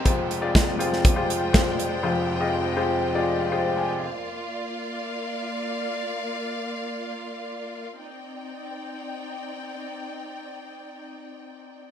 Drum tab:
HH |x-x-x-x-x-x-x-x-|----------------|----------------|----------------|
SD |----o--o----o---|----------------|----------------|----------------|
BD |o---o---o---o---|----------------|----------------|----------------|

HH |----------------|----------------|
SD |----------------|----------------|
BD |----------------|----------------|